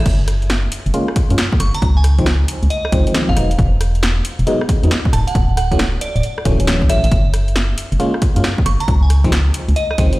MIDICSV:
0, 0, Header, 1, 5, 480
1, 0, Start_track
1, 0, Tempo, 441176
1, 62, Time_signature, 4, 2, 24, 8
1, 11092, End_track
2, 0, Start_track
2, 0, Title_t, "Synth bell"
2, 0, Program_c, 0, 98
2, 1742, Note_on_c, 0, 85, 87
2, 1867, Note_off_c, 0, 85, 0
2, 1900, Note_on_c, 0, 82, 85
2, 2045, Note_off_c, 0, 82, 0
2, 2141, Note_on_c, 0, 80, 86
2, 2336, Note_off_c, 0, 80, 0
2, 2942, Note_on_c, 0, 75, 88
2, 3042, Note_off_c, 0, 75, 0
2, 3099, Note_on_c, 0, 75, 77
2, 3152, Note_off_c, 0, 75, 0
2, 3580, Note_on_c, 0, 77, 88
2, 3725, Note_off_c, 0, 77, 0
2, 5580, Note_on_c, 0, 81, 88
2, 5707, Note_off_c, 0, 81, 0
2, 5738, Note_on_c, 0, 78, 88
2, 5934, Note_off_c, 0, 78, 0
2, 6062, Note_on_c, 0, 78, 89
2, 6162, Note_off_c, 0, 78, 0
2, 6220, Note_on_c, 0, 78, 75
2, 6272, Note_off_c, 0, 78, 0
2, 6542, Note_on_c, 0, 74, 84
2, 6642, Note_off_c, 0, 74, 0
2, 6699, Note_on_c, 0, 74, 73
2, 6752, Note_off_c, 0, 74, 0
2, 7502, Note_on_c, 0, 76, 82
2, 7602, Note_off_c, 0, 76, 0
2, 7659, Note_on_c, 0, 76, 74
2, 7712, Note_off_c, 0, 76, 0
2, 9421, Note_on_c, 0, 85, 86
2, 9547, Note_off_c, 0, 85, 0
2, 9579, Note_on_c, 0, 82, 89
2, 9724, Note_off_c, 0, 82, 0
2, 9820, Note_on_c, 0, 80, 87
2, 10015, Note_off_c, 0, 80, 0
2, 10621, Note_on_c, 0, 75, 84
2, 10722, Note_off_c, 0, 75, 0
2, 10778, Note_on_c, 0, 75, 75
2, 10832, Note_off_c, 0, 75, 0
2, 11092, End_track
3, 0, Start_track
3, 0, Title_t, "FM electric piano"
3, 0, Program_c, 1, 5
3, 1021, Note_on_c, 1, 56, 93
3, 1021, Note_on_c, 1, 58, 84
3, 1021, Note_on_c, 1, 61, 85
3, 1021, Note_on_c, 1, 65, 106
3, 1155, Note_off_c, 1, 56, 0
3, 1155, Note_off_c, 1, 58, 0
3, 1155, Note_off_c, 1, 61, 0
3, 1155, Note_off_c, 1, 65, 0
3, 1418, Note_on_c, 1, 56, 89
3, 1418, Note_on_c, 1, 58, 82
3, 1418, Note_on_c, 1, 61, 82
3, 1418, Note_on_c, 1, 65, 92
3, 1489, Note_off_c, 1, 56, 0
3, 1489, Note_off_c, 1, 58, 0
3, 1489, Note_off_c, 1, 61, 0
3, 1489, Note_off_c, 1, 65, 0
3, 2379, Note_on_c, 1, 51, 98
3, 2379, Note_on_c, 1, 53, 89
3, 2379, Note_on_c, 1, 56, 90
3, 2379, Note_on_c, 1, 60, 110
3, 2449, Note_off_c, 1, 51, 0
3, 2449, Note_off_c, 1, 53, 0
3, 2449, Note_off_c, 1, 56, 0
3, 2449, Note_off_c, 1, 60, 0
3, 3181, Note_on_c, 1, 51, 91
3, 3181, Note_on_c, 1, 53, 89
3, 3181, Note_on_c, 1, 56, 86
3, 3181, Note_on_c, 1, 60, 105
3, 3315, Note_off_c, 1, 51, 0
3, 3315, Note_off_c, 1, 53, 0
3, 3315, Note_off_c, 1, 56, 0
3, 3315, Note_off_c, 1, 60, 0
3, 3338, Note_on_c, 1, 51, 73
3, 3338, Note_on_c, 1, 53, 70
3, 3338, Note_on_c, 1, 60, 79
3, 3339, Note_on_c, 1, 56, 70
3, 3641, Note_off_c, 1, 51, 0
3, 3641, Note_off_c, 1, 60, 0
3, 3642, Note_off_c, 1, 53, 0
3, 3642, Note_off_c, 1, 56, 0
3, 3661, Note_on_c, 1, 54, 80
3, 3661, Note_on_c, 1, 56, 69
3, 3661, Note_on_c, 1, 59, 72
3, 3661, Note_on_c, 1, 63, 88
3, 3795, Note_off_c, 1, 54, 0
3, 3795, Note_off_c, 1, 56, 0
3, 3795, Note_off_c, 1, 59, 0
3, 3795, Note_off_c, 1, 63, 0
3, 4862, Note_on_c, 1, 54, 95
3, 4862, Note_on_c, 1, 56, 89
3, 4862, Note_on_c, 1, 59, 89
3, 4862, Note_on_c, 1, 63, 106
3, 4995, Note_off_c, 1, 56, 0
3, 4995, Note_off_c, 1, 59, 0
3, 4995, Note_off_c, 1, 63, 0
3, 4996, Note_off_c, 1, 54, 0
3, 5259, Note_on_c, 1, 54, 88
3, 5259, Note_on_c, 1, 56, 76
3, 5259, Note_on_c, 1, 59, 82
3, 5259, Note_on_c, 1, 63, 97
3, 5329, Note_off_c, 1, 54, 0
3, 5329, Note_off_c, 1, 56, 0
3, 5329, Note_off_c, 1, 59, 0
3, 5329, Note_off_c, 1, 63, 0
3, 6218, Note_on_c, 1, 57, 91
3, 6218, Note_on_c, 1, 61, 112
3, 6219, Note_on_c, 1, 52, 95
3, 6219, Note_on_c, 1, 54, 89
3, 6289, Note_off_c, 1, 52, 0
3, 6289, Note_off_c, 1, 54, 0
3, 6289, Note_off_c, 1, 57, 0
3, 6289, Note_off_c, 1, 61, 0
3, 7020, Note_on_c, 1, 54, 86
3, 7021, Note_on_c, 1, 52, 96
3, 7021, Note_on_c, 1, 57, 87
3, 7021, Note_on_c, 1, 61, 104
3, 7154, Note_off_c, 1, 54, 0
3, 7155, Note_off_c, 1, 52, 0
3, 7155, Note_off_c, 1, 57, 0
3, 7155, Note_off_c, 1, 61, 0
3, 7177, Note_on_c, 1, 61, 82
3, 7178, Note_on_c, 1, 52, 73
3, 7178, Note_on_c, 1, 54, 69
3, 7178, Note_on_c, 1, 57, 65
3, 7481, Note_off_c, 1, 52, 0
3, 7481, Note_off_c, 1, 54, 0
3, 7481, Note_off_c, 1, 57, 0
3, 7481, Note_off_c, 1, 61, 0
3, 7500, Note_on_c, 1, 52, 74
3, 7500, Note_on_c, 1, 54, 70
3, 7500, Note_on_c, 1, 57, 73
3, 7500, Note_on_c, 1, 61, 84
3, 7634, Note_off_c, 1, 54, 0
3, 7635, Note_off_c, 1, 52, 0
3, 7635, Note_off_c, 1, 57, 0
3, 7635, Note_off_c, 1, 61, 0
3, 8700, Note_on_c, 1, 56, 98
3, 8700, Note_on_c, 1, 65, 102
3, 8701, Note_on_c, 1, 58, 85
3, 8701, Note_on_c, 1, 61, 88
3, 8835, Note_off_c, 1, 56, 0
3, 8835, Note_off_c, 1, 58, 0
3, 8835, Note_off_c, 1, 61, 0
3, 8835, Note_off_c, 1, 65, 0
3, 9097, Note_on_c, 1, 56, 89
3, 9097, Note_on_c, 1, 58, 80
3, 9097, Note_on_c, 1, 61, 79
3, 9097, Note_on_c, 1, 65, 93
3, 9168, Note_off_c, 1, 56, 0
3, 9169, Note_off_c, 1, 58, 0
3, 9169, Note_off_c, 1, 61, 0
3, 9169, Note_off_c, 1, 65, 0
3, 10058, Note_on_c, 1, 51, 102
3, 10058, Note_on_c, 1, 53, 93
3, 10058, Note_on_c, 1, 56, 89
3, 10058, Note_on_c, 1, 60, 108
3, 10129, Note_off_c, 1, 51, 0
3, 10129, Note_off_c, 1, 53, 0
3, 10129, Note_off_c, 1, 56, 0
3, 10129, Note_off_c, 1, 60, 0
3, 10860, Note_on_c, 1, 53, 84
3, 10861, Note_on_c, 1, 51, 95
3, 10861, Note_on_c, 1, 56, 89
3, 10861, Note_on_c, 1, 60, 102
3, 10995, Note_off_c, 1, 51, 0
3, 10995, Note_off_c, 1, 53, 0
3, 10995, Note_off_c, 1, 56, 0
3, 10995, Note_off_c, 1, 60, 0
3, 11017, Note_on_c, 1, 51, 72
3, 11017, Note_on_c, 1, 53, 66
3, 11017, Note_on_c, 1, 56, 69
3, 11018, Note_on_c, 1, 60, 79
3, 11092, Note_off_c, 1, 51, 0
3, 11092, Note_off_c, 1, 53, 0
3, 11092, Note_off_c, 1, 56, 0
3, 11092, Note_off_c, 1, 60, 0
3, 11092, End_track
4, 0, Start_track
4, 0, Title_t, "FM bass"
4, 0, Program_c, 2, 39
4, 62, Note_on_c, 2, 30, 102
4, 748, Note_off_c, 2, 30, 0
4, 938, Note_on_c, 2, 30, 78
4, 1000, Note_off_c, 2, 30, 0
4, 1419, Note_on_c, 2, 42, 80
4, 1481, Note_off_c, 2, 42, 0
4, 1741, Note_on_c, 2, 30, 94
4, 1859, Note_off_c, 2, 30, 0
4, 1982, Note_on_c, 2, 37, 98
4, 2668, Note_off_c, 2, 37, 0
4, 2858, Note_on_c, 2, 37, 79
4, 2920, Note_off_c, 2, 37, 0
4, 3181, Note_on_c, 2, 37, 94
4, 3299, Note_off_c, 2, 37, 0
4, 3578, Note_on_c, 2, 32, 104
4, 3641, Note_off_c, 2, 32, 0
4, 3661, Note_on_c, 2, 28, 86
4, 3860, Note_off_c, 2, 28, 0
4, 3901, Note_on_c, 2, 28, 98
4, 4588, Note_off_c, 2, 28, 0
4, 4779, Note_on_c, 2, 28, 82
4, 4841, Note_off_c, 2, 28, 0
4, 5259, Note_on_c, 2, 40, 84
4, 5321, Note_off_c, 2, 40, 0
4, 5582, Note_on_c, 2, 26, 94
4, 5699, Note_off_c, 2, 26, 0
4, 5821, Note_on_c, 2, 26, 96
4, 6508, Note_off_c, 2, 26, 0
4, 6699, Note_on_c, 2, 26, 78
4, 6761, Note_off_c, 2, 26, 0
4, 7022, Note_on_c, 2, 26, 93
4, 7419, Note_on_c, 2, 38, 77
4, 7435, Note_off_c, 2, 26, 0
4, 7502, Note_on_c, 2, 33, 85
4, 7518, Note_off_c, 2, 38, 0
4, 7619, Note_off_c, 2, 33, 0
4, 7658, Note_on_c, 2, 33, 94
4, 7720, Note_off_c, 2, 33, 0
4, 7741, Note_on_c, 2, 30, 101
4, 8428, Note_off_c, 2, 30, 0
4, 8619, Note_on_c, 2, 30, 81
4, 8681, Note_off_c, 2, 30, 0
4, 9099, Note_on_c, 2, 42, 84
4, 9161, Note_off_c, 2, 42, 0
4, 9421, Note_on_c, 2, 30, 98
4, 9539, Note_off_c, 2, 30, 0
4, 9661, Note_on_c, 2, 37, 100
4, 10348, Note_off_c, 2, 37, 0
4, 10538, Note_on_c, 2, 37, 80
4, 10600, Note_off_c, 2, 37, 0
4, 10861, Note_on_c, 2, 37, 93
4, 10979, Note_off_c, 2, 37, 0
4, 11092, End_track
5, 0, Start_track
5, 0, Title_t, "Drums"
5, 62, Note_on_c, 9, 36, 125
5, 62, Note_on_c, 9, 42, 62
5, 62, Note_on_c, 9, 49, 93
5, 170, Note_off_c, 9, 42, 0
5, 170, Note_off_c, 9, 49, 0
5, 171, Note_off_c, 9, 36, 0
5, 302, Note_on_c, 9, 37, 59
5, 302, Note_on_c, 9, 46, 106
5, 410, Note_off_c, 9, 37, 0
5, 410, Note_off_c, 9, 46, 0
5, 459, Note_on_c, 9, 42, 34
5, 541, Note_off_c, 9, 42, 0
5, 541, Note_on_c, 9, 38, 115
5, 541, Note_on_c, 9, 42, 62
5, 650, Note_off_c, 9, 38, 0
5, 650, Note_off_c, 9, 42, 0
5, 781, Note_on_c, 9, 46, 105
5, 890, Note_off_c, 9, 46, 0
5, 939, Note_on_c, 9, 42, 36
5, 1021, Note_off_c, 9, 42, 0
5, 1021, Note_on_c, 9, 42, 68
5, 1130, Note_off_c, 9, 42, 0
5, 1178, Note_on_c, 9, 37, 64
5, 1261, Note_on_c, 9, 46, 104
5, 1262, Note_on_c, 9, 36, 103
5, 1287, Note_off_c, 9, 37, 0
5, 1370, Note_off_c, 9, 46, 0
5, 1371, Note_off_c, 9, 36, 0
5, 1418, Note_on_c, 9, 42, 66
5, 1501, Note_off_c, 9, 42, 0
5, 1501, Note_on_c, 9, 38, 113
5, 1501, Note_on_c, 9, 42, 64
5, 1609, Note_off_c, 9, 38, 0
5, 1609, Note_off_c, 9, 42, 0
5, 1659, Note_on_c, 9, 36, 110
5, 1741, Note_on_c, 9, 37, 51
5, 1741, Note_on_c, 9, 46, 107
5, 1768, Note_off_c, 9, 36, 0
5, 1850, Note_off_c, 9, 37, 0
5, 1850, Note_off_c, 9, 46, 0
5, 1898, Note_on_c, 9, 42, 65
5, 1981, Note_off_c, 9, 42, 0
5, 1981, Note_on_c, 9, 42, 62
5, 1982, Note_on_c, 9, 36, 123
5, 2090, Note_off_c, 9, 42, 0
5, 2091, Note_off_c, 9, 36, 0
5, 2221, Note_on_c, 9, 37, 56
5, 2221, Note_on_c, 9, 46, 103
5, 2330, Note_off_c, 9, 37, 0
5, 2330, Note_off_c, 9, 46, 0
5, 2378, Note_on_c, 9, 42, 35
5, 2379, Note_on_c, 9, 36, 61
5, 2461, Note_off_c, 9, 42, 0
5, 2461, Note_on_c, 9, 38, 118
5, 2461, Note_on_c, 9, 42, 62
5, 2488, Note_off_c, 9, 36, 0
5, 2569, Note_off_c, 9, 38, 0
5, 2569, Note_off_c, 9, 42, 0
5, 2701, Note_on_c, 9, 46, 109
5, 2810, Note_off_c, 9, 46, 0
5, 2858, Note_on_c, 9, 42, 35
5, 2941, Note_off_c, 9, 42, 0
5, 2941, Note_on_c, 9, 42, 60
5, 3050, Note_off_c, 9, 42, 0
5, 3099, Note_on_c, 9, 37, 65
5, 3181, Note_on_c, 9, 46, 103
5, 3182, Note_on_c, 9, 36, 107
5, 3207, Note_off_c, 9, 37, 0
5, 3290, Note_off_c, 9, 36, 0
5, 3290, Note_off_c, 9, 46, 0
5, 3339, Note_on_c, 9, 42, 63
5, 3422, Note_off_c, 9, 42, 0
5, 3422, Note_on_c, 9, 38, 120
5, 3422, Note_on_c, 9, 42, 61
5, 3530, Note_off_c, 9, 38, 0
5, 3530, Note_off_c, 9, 42, 0
5, 3579, Note_on_c, 9, 36, 64
5, 3662, Note_on_c, 9, 37, 52
5, 3662, Note_on_c, 9, 46, 102
5, 3688, Note_off_c, 9, 36, 0
5, 3771, Note_off_c, 9, 37, 0
5, 3771, Note_off_c, 9, 46, 0
5, 3819, Note_on_c, 9, 42, 59
5, 3901, Note_off_c, 9, 42, 0
5, 3901, Note_on_c, 9, 42, 59
5, 3902, Note_on_c, 9, 36, 127
5, 4010, Note_off_c, 9, 36, 0
5, 4010, Note_off_c, 9, 42, 0
5, 4142, Note_on_c, 9, 37, 60
5, 4142, Note_on_c, 9, 46, 104
5, 4250, Note_off_c, 9, 37, 0
5, 4250, Note_off_c, 9, 46, 0
5, 4299, Note_on_c, 9, 42, 35
5, 4382, Note_off_c, 9, 42, 0
5, 4382, Note_on_c, 9, 38, 123
5, 4382, Note_on_c, 9, 42, 58
5, 4491, Note_off_c, 9, 38, 0
5, 4491, Note_off_c, 9, 42, 0
5, 4622, Note_on_c, 9, 46, 100
5, 4730, Note_off_c, 9, 46, 0
5, 4779, Note_on_c, 9, 42, 34
5, 4862, Note_off_c, 9, 42, 0
5, 4862, Note_on_c, 9, 42, 64
5, 4971, Note_off_c, 9, 42, 0
5, 5019, Note_on_c, 9, 37, 65
5, 5101, Note_on_c, 9, 36, 104
5, 5102, Note_on_c, 9, 46, 96
5, 5128, Note_off_c, 9, 37, 0
5, 5210, Note_off_c, 9, 36, 0
5, 5211, Note_off_c, 9, 46, 0
5, 5260, Note_on_c, 9, 42, 60
5, 5343, Note_off_c, 9, 42, 0
5, 5343, Note_on_c, 9, 38, 127
5, 5343, Note_on_c, 9, 42, 63
5, 5451, Note_off_c, 9, 38, 0
5, 5451, Note_off_c, 9, 42, 0
5, 5498, Note_on_c, 9, 36, 113
5, 5583, Note_on_c, 9, 37, 50
5, 5583, Note_on_c, 9, 46, 104
5, 5607, Note_off_c, 9, 36, 0
5, 5691, Note_off_c, 9, 37, 0
5, 5691, Note_off_c, 9, 46, 0
5, 5740, Note_on_c, 9, 42, 62
5, 5821, Note_on_c, 9, 36, 123
5, 5822, Note_off_c, 9, 42, 0
5, 5822, Note_on_c, 9, 42, 62
5, 5930, Note_off_c, 9, 36, 0
5, 5931, Note_off_c, 9, 42, 0
5, 6063, Note_on_c, 9, 37, 56
5, 6063, Note_on_c, 9, 46, 98
5, 6172, Note_off_c, 9, 37, 0
5, 6172, Note_off_c, 9, 46, 0
5, 6219, Note_on_c, 9, 36, 65
5, 6220, Note_on_c, 9, 42, 35
5, 6302, Note_off_c, 9, 42, 0
5, 6302, Note_on_c, 9, 38, 113
5, 6302, Note_on_c, 9, 42, 63
5, 6327, Note_off_c, 9, 36, 0
5, 6411, Note_off_c, 9, 38, 0
5, 6411, Note_off_c, 9, 42, 0
5, 6542, Note_on_c, 9, 46, 100
5, 6651, Note_off_c, 9, 46, 0
5, 6699, Note_on_c, 9, 42, 36
5, 6782, Note_off_c, 9, 42, 0
5, 6782, Note_on_c, 9, 42, 65
5, 6891, Note_off_c, 9, 42, 0
5, 6940, Note_on_c, 9, 37, 64
5, 7022, Note_on_c, 9, 36, 107
5, 7022, Note_on_c, 9, 46, 94
5, 7049, Note_off_c, 9, 37, 0
5, 7131, Note_off_c, 9, 36, 0
5, 7131, Note_off_c, 9, 46, 0
5, 7178, Note_on_c, 9, 42, 63
5, 7262, Note_off_c, 9, 42, 0
5, 7262, Note_on_c, 9, 38, 118
5, 7262, Note_on_c, 9, 42, 61
5, 7370, Note_off_c, 9, 38, 0
5, 7370, Note_off_c, 9, 42, 0
5, 7419, Note_on_c, 9, 36, 64
5, 7502, Note_on_c, 9, 37, 48
5, 7502, Note_on_c, 9, 46, 97
5, 7528, Note_off_c, 9, 36, 0
5, 7611, Note_off_c, 9, 37, 0
5, 7611, Note_off_c, 9, 46, 0
5, 7658, Note_on_c, 9, 42, 60
5, 7741, Note_off_c, 9, 42, 0
5, 7741, Note_on_c, 9, 42, 67
5, 7742, Note_on_c, 9, 36, 122
5, 7850, Note_off_c, 9, 36, 0
5, 7850, Note_off_c, 9, 42, 0
5, 7982, Note_on_c, 9, 37, 54
5, 7982, Note_on_c, 9, 46, 97
5, 8091, Note_off_c, 9, 37, 0
5, 8091, Note_off_c, 9, 46, 0
5, 8139, Note_on_c, 9, 42, 37
5, 8221, Note_off_c, 9, 42, 0
5, 8221, Note_on_c, 9, 38, 113
5, 8221, Note_on_c, 9, 42, 62
5, 8330, Note_off_c, 9, 38, 0
5, 8330, Note_off_c, 9, 42, 0
5, 8461, Note_on_c, 9, 46, 101
5, 8570, Note_off_c, 9, 46, 0
5, 8619, Note_on_c, 9, 42, 37
5, 8701, Note_off_c, 9, 42, 0
5, 8701, Note_on_c, 9, 42, 66
5, 8810, Note_off_c, 9, 42, 0
5, 8858, Note_on_c, 9, 37, 61
5, 8941, Note_on_c, 9, 36, 104
5, 8941, Note_on_c, 9, 46, 95
5, 8967, Note_off_c, 9, 37, 0
5, 9050, Note_off_c, 9, 36, 0
5, 9050, Note_off_c, 9, 46, 0
5, 9098, Note_on_c, 9, 42, 66
5, 9181, Note_off_c, 9, 42, 0
5, 9181, Note_on_c, 9, 38, 116
5, 9181, Note_on_c, 9, 42, 61
5, 9290, Note_off_c, 9, 38, 0
5, 9290, Note_off_c, 9, 42, 0
5, 9339, Note_on_c, 9, 36, 105
5, 9421, Note_on_c, 9, 37, 47
5, 9421, Note_on_c, 9, 46, 97
5, 9447, Note_off_c, 9, 36, 0
5, 9530, Note_off_c, 9, 37, 0
5, 9530, Note_off_c, 9, 46, 0
5, 9579, Note_on_c, 9, 42, 62
5, 9661, Note_off_c, 9, 42, 0
5, 9661, Note_on_c, 9, 36, 116
5, 9661, Note_on_c, 9, 42, 67
5, 9770, Note_off_c, 9, 36, 0
5, 9770, Note_off_c, 9, 42, 0
5, 9902, Note_on_c, 9, 37, 52
5, 9902, Note_on_c, 9, 46, 103
5, 10010, Note_off_c, 9, 37, 0
5, 10010, Note_off_c, 9, 46, 0
5, 10058, Note_on_c, 9, 36, 61
5, 10058, Note_on_c, 9, 42, 36
5, 10141, Note_off_c, 9, 42, 0
5, 10141, Note_on_c, 9, 38, 107
5, 10141, Note_on_c, 9, 42, 66
5, 10167, Note_off_c, 9, 36, 0
5, 10250, Note_off_c, 9, 38, 0
5, 10250, Note_off_c, 9, 42, 0
5, 10381, Note_on_c, 9, 46, 104
5, 10490, Note_off_c, 9, 46, 0
5, 10538, Note_on_c, 9, 42, 37
5, 10621, Note_off_c, 9, 42, 0
5, 10621, Note_on_c, 9, 42, 69
5, 10730, Note_off_c, 9, 42, 0
5, 10778, Note_on_c, 9, 37, 60
5, 10860, Note_on_c, 9, 46, 97
5, 10861, Note_on_c, 9, 36, 102
5, 10886, Note_off_c, 9, 37, 0
5, 10969, Note_off_c, 9, 46, 0
5, 10970, Note_off_c, 9, 36, 0
5, 11017, Note_on_c, 9, 42, 67
5, 11092, Note_off_c, 9, 42, 0
5, 11092, End_track
0, 0, End_of_file